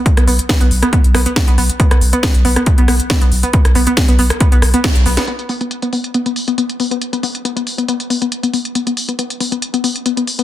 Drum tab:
HH |xxoxxxoxxxoxxxox|xxoxxxoxxxoxxxox|xxoxxxoxxxoxxxox|xxoxxxoxxxoxxxox|
SD |-r--o--r--r-o---|-r--o--r--r-o---|-r--o--r--r-o--o|----------------|
BD |o---o---o---o---|o---o---o---o---|o---o---o---o---|----------------|

HH |xxoxxxoxxxoxxxox|xxoxxxoxxxoxxxox|
SD |----------------|----------------|
BD |----------------|----------------|